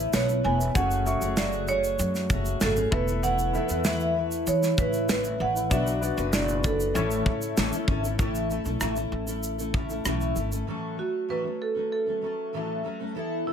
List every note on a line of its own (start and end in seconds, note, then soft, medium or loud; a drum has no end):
0.00 0.11 A3 medium
0.00 0.12 B3 medium
0.00 0.77 B3 medium
0.00 0.12 E4 medium
0.00 0.77 E4 medium
0.00 0.76 A4 medium
0.00 0.13 B4 medium
0.00 0.16 B4 medium
0.00 0.77 E5 medium
0.12 0.39 B1 medium
0.12 0.28 A3 medium
0.12 0.29 B3 medium
0.12 0.28 E4 medium
0.12 0.26 B4 medium
0.12 0.46 C#5 medium
0.12 snare loud
0.12 shaker medium
0.28 0.43 B3 soft
0.28 0.44 E4 soft
0.28 0.44 B4 soft
0.28 shaker soft
0.43 0.70 E1 loud
0.43 0.59 A3 medium
0.43 0.60 B3 medium
0.43 0.59 E4 medium
0.43 0.57 B4 medium
0.43 0.76 G#5 loud
0.59 0.76 B3 soft
0.59 0.75 E4 soft
0.59 0.75 B4 medium
0.59 shaker medium
0.74 1.13 F#1 loud
0.74 1.21 F#2 medium
0.74 1.22 C#3 medium
0.74 0.96 A3 medium
0.74 1.22 A3 medium
0.74 1.22 C#4 medium
0.74 0.96 F#4 medium
0.74 1.21 F#4 medium
0.74 0.96 G#4 medium
0.74 1.20 G#4 medium
0.74 0.97 C#5 medium
0.74 1.04 F#5 loud
0.74 kick loud
0.74 shaker medium
0.91 shaker medium
1.05 1.89 A3 medium
1.05 1.90 F#4 medium
1.05 1.90 G#4 medium
1.05 1.38 E5 medium
1.05 1.91 C#6 medium
1.05 shaker medium
1.21 1.95 F#1 medium
1.21 1.37 A3 soft
1.21 1.38 C#4 soft
1.21 1.37 F#4 medium
1.21 1.37 G#4 medium
1.21 shaker medium
1.37 1.68 F#2 medium
1.37 1.68 C#3 medium
1.37 1.67 A3 medium
1.37 1.68 F#4 medium
1.37 1.69 G#4 medium
1.37 1.66 D5 medium
1.37 snare loud
1.37 shaker medium
1.52 shaker soft
1.68 2.29 A3 medium
1.68 2.29 C#4 medium
1.68 2.30 F#4 medium
1.68 2.31 G#4 medium
1.68 2.64 C#5 medium
1.68 shaker medium
1.84 shaker medium
1.99 2.32 F#2 loud
1.99 shaker medium
2.15 snare soft
2.15 shaker medium
2.30 2.55 F#1 medium
2.30 2.61 A3 medium
2.30 2.61 C#4 medium
2.30 2.61 F#4 medium
2.30 2.62 G#4 medium
2.30 kick medium
2.30 shaker soft
2.45 shaker medium
2.61 2.87 G#1 medium
2.61 2.77 F#2 medium
2.61 2.77 C#3 medium
2.61 2.77 A3 medium
2.61 2.77 C#4 medium
2.61 2.76 F#4 medium
2.61 2.75 G#4 medium
2.61 2.93 A4 medium
2.61 snare loud
2.61 shaker medium
2.76 2.91 A3 soft
2.76 2.92 C#4 soft
2.76 2.92 F#4 medium
2.76 2.92 G#4 medium
2.76 shaker soft
2.91 3.56 E1 loud
2.91 3.07 E3 medium
2.91 3.08 A3 medium
2.91 3.41 B3 medium
2.91 3.41 E4 medium
2.91 3.07 E4 medium
2.91 3.42 A4 medium
2.91 3.24 B4 medium
2.91 3.06 B4 medium
2.91 3.42 E5 medium
2.91 kick loud
3.07 3.22 A3 soft
3.07 3.23 E4 soft
3.07 3.23 B4 medium
3.07 shaker medium
3.23 3.52 E3 medium
3.23 3.53 A3 medium
3.23 3.54 E4 loud
3.23 3.54 B4 medium
3.23 3.55 F#5 loud
3.23 shaker medium
3.39 shaker medium
3.53 3.69 E3 medium
3.53 3.69 A3 medium
3.53 4.37 B3 medium
3.53 4.38 E4 medium
3.53 3.69 E4 medium
3.53 4.38 A4 medium
3.53 3.67 B4 medium
3.53 4.38 E5 medium
3.53 3.69 E5 medium
3.53 shaker medium
3.69 4.43 E2 medium
3.69 3.84 A3 soft
3.69 3.84 E4 soft
3.69 3.84 B4 medium
3.69 shaker medium
3.84 4.14 E3 medium
3.84 4.15 A3 medium
3.84 4.15 E4 medium
3.84 4.16 B4 medium
3.84 4.49 E5 medium
3.84 snare loud
3.84 shaker medium
4.00 shaker soft
4.15 4.76 E3 medium
4.15 4.77 A3 medium
4.15 4.78 E4 medium
4.15 4.79 B4 medium
4.31 shaker medium
4.47 4.72 E3 loud
4.47 4.79 C#5 medium
4.47 shaker medium
4.63 snare soft
4.63 shaker medium
4.77 5.10 A2 medium
4.77 5.07 E3 medium
4.77 5.08 A3 medium
4.77 5.09 E4 medium
4.77 5.07 B4 medium
4.77 5.09 B4 medium
4.77 kick medium
4.77 shaker soft
4.93 shaker medium
5.09 5.34 A1 medium
5.09 5.24 E3 medium
5.09 5.24 A3 medium
5.09 5.24 E4 medium
5.09 5.41 B4 medium
5.09 5.23 B4 medium
5.09 snare loud
5.09 shaker medium
5.24 5.38 A3 soft
5.24 5.39 E4 medium
5.24 5.39 B4 medium
5.24 shaker soft
5.38 5.71 A1 medium
5.38 5.54 E3 medium
5.38 5.55 A3 medium
5.38 5.55 E4 medium
5.38 5.53 B4 medium
5.38 5.72 F#5 medium
5.54 5.71 A3 soft
5.54 5.71 E4 soft
5.54 5.70 B4 soft
5.54 shaker medium
5.70 6.09 B1 loud
5.70 6.17 B2 medium
5.70 6.17 F#3 medium
5.70 5.91 B3 medium
5.70 5.92 D4 medium
5.70 6.17 D4 medium
5.70 5.92 F#4 medium
5.70 6.17 F#4 medium
5.70 6.16 B4 medium
5.70 5.92 D5 medium
5.70 6.35 E5 medium
5.70 kick loud
5.70 shaker medium
5.87 shaker medium
6.01 6.85 B3 medium
6.01 6.85 D4 medium
6.01 6.86 F#4 medium
6.01 6.86 D5 medium
6.01 shaker medium
6.17 6.91 F#1 loud
6.17 6.33 D4 soft
6.17 6.33 F#4 soft
6.17 6.33 B4 medium
6.17 shaker medium
6.33 6.64 B2 medium
6.33 6.62 F#3 medium
6.33 6.63 D4 medium
6.33 6.64 F#4 medium
6.33 6.65 B4 medium
6.33 6.65 D5 medium
6.33 snare loud
6.33 shaker medium
6.48 shaker soft
6.64 6.95 F#3 medium
6.64 6.95 F#4 medium
6.64 7.84 A4 medium
6.64 6.96 B4 medium
6.64 kick medium
6.64 shaker medium
6.80 shaker medium
6.94 7.20 A1 loud
6.94 7.26 A2 medium
6.94 7.26 E3 medium
6.94 7.93 A3 medium
6.94 7.24 A3 medium
6.94 7.94 C#4 medium
6.94 7.26 C#4 medium
6.94 7.94 E4 medium
6.94 7.26 E4 medium
6.94 7.26 A4 medium
6.94 7.94 C#5 medium
6.94 shaker medium
7.11 shaker medium
7.26 7.51 A2 medium
7.26 7.57 A3 medium
7.26 7.57 C#4 medium
7.26 7.57 E4 medium
7.26 7.57 A4 medium
7.26 kick medium
7.42 shaker medium
7.57 7.70 A1 medium
7.57 7.72 A2 medium
7.57 7.72 E3 medium
7.57 7.73 A3 medium
7.57 7.72 C#4 medium
7.57 7.72 E4 medium
7.57 7.71 A4 loud
7.57 snare loud
7.57 shaker medium
7.72 7.86 A3 medium
7.72 7.87 C#4 medium
7.72 7.88 E4 medium
7.72 7.87 A4 medium
7.72 shaker medium
7.87 8.13 G#1 medium
7.87 8.03 A3 medium
7.87 8.03 C#4 medium
7.87 8.03 E4 medium
7.87 8.02 A4 medium
7.87 kick medium
8.03 8.18 A3 soft
8.03 8.18 C#4 medium
8.03 8.18 E4 medium
8.03 8.18 A4 medium
8.03 shaker medium
8.18 8.57 A1 medium
8.18 8.49 A2 medium
8.18 8.50 E3 medium
8.18 8.48 A3 medium
8.18 8.49 C#4 medium
8.18 8.50 E4 medium
8.18 8.50 A4 medium
8.18 kick loud
8.18 shaker medium
8.35 shaker medium
8.49 8.65 A3 medium
8.49 8.65 C#4 medium
8.49 8.65 E4 medium
8.49 8.64 A4 medium
8.49 shaker soft
8.65 8.78 B1 medium
8.65 8.80 A3 soft
8.65 8.80 C#4 medium
8.65 8.81 E4 medium
8.65 8.81 A4 medium
8.65 shaker medium
8.81 9.06 A1 medium
8.81 8.96 A2 medium
8.81 8.96 E3 medium
8.81 8.96 A3 medium
8.81 8.96 C#4 medium
8.81 8.95 E4 medium
8.81 8.94 A4 medium
8.81 cross-stick loud
8.81 shaker medium
8.95 9.28 A3 soft
8.95 9.27 C#4 medium
8.95 9.27 E4 medium
8.95 9.26 A4 medium
8.95 shaker soft
9.12 10.01 A1 medium
9.27 9.59 A3 soft
9.27 9.58 C#4 medium
9.27 9.58 E4 medium
9.27 9.57 A4 medium
9.27 shaker medium
9.43 shaker medium
9.58 9.73 A3 soft
9.58 9.73 C#4 medium
9.58 9.74 E4 soft
9.58 9.74 A4 medium
9.58 shaker soft
9.74 9.89 A3 medium
9.74 9.90 C#4 medium
9.74 9.90 E4 medium
9.74 9.88 A4 medium
9.74 kick medium
9.90 10.04 A3 soft
9.90 10.05 C#4 soft
9.90 10.05 E4 medium
9.90 10.05 A4 medium
9.90 shaker medium
10.05 10.30 B1 medium
10.05 10.36 A2 medium
10.05 10.36 E3 medium
10.05 10.34 A3 medium
10.05 10.35 C#4 medium
10.05 10.36 E4 medium
10.05 10.37 A4 medium
10.05 cross-stick loud
10.05 shaker medium
10.21 shaker soft
10.36 10.61 G#1 medium
10.36 10.51 A3 medium
10.36 10.52 C#4 medium
10.36 10.51 E4 medium
10.36 10.50 A4 medium
10.36 shaker soft
10.51 10.67 A3 soft
10.51 10.67 C#4 soft
10.51 10.67 E4 soft
10.51 10.67 A4 soft
10.51 shaker medium
10.67 10.98 A2 medium
10.67 10.98 E3 medium
10.67 10.96 F#3 medium
10.67 10.97 A3 medium
10.67 10.98 C#4 medium
10.67 10.99 A4 medium
10.97 11.28 F#3 soft
10.97 11.28 A3 soft
10.97 11.29 C#4 medium
10.97 11.30 F#4 medium
10.97 11.29 A4 soft
11.28 11.44 A2 medium
11.28 11.44 E3 medium
11.28 11.45 F#3 medium
11.28 11.44 A3 medium
11.28 11.43 C#4 medium
11.28 11.42 A4 medium
11.28 11.62 B4 medium
11.43 11.76 F#3 soft
11.43 11.75 A3 soft
11.43 11.75 C#4 soft
11.43 11.73 A4 soft
11.62 11.91 A4 medium
11.75 12.07 F#3 soft
11.75 12.07 A3 soft
11.75 12.06 C#4 soft
11.75 12.05 A4 soft
11.92 12.81 A4 medium
12.06 12.20 F#3 soft
12.06 12.21 A3 soft
12.06 12.22 C#4 soft
12.06 12.22 A4 soft
12.22 12.53 F#3 soft
12.22 12.53 A3 soft
12.22 12.53 C#4 soft
12.22 12.53 A4 medium
12.53 12.84 A2 medium
12.53 12.84 E3 medium
12.53 12.82 F#3 medium
12.53 12.83 A3 medium
12.53 12.84 C#4 medium
12.53 12.85 A4 medium
12.83 12.99 F#3 medium
12.83 13.00 A3 medium
12.83 12.99 C#4 medium
12.83 12.98 A4 medium
13.00 13.14 F#3 soft
13.00 13.15 A3 soft
13.00 13.16 C#4 soft
13.00 13.15 A4 soft
13.15 13.45 E3 medium
13.15 13.46 B3 medium
13.15 13.47 E4 medium
13.15 13.47 A4 medium
13.46 13.53 E3 soft
13.46 13.53 B3 soft
13.46 13.53 E4 medium
13.46 13.53 A4 medium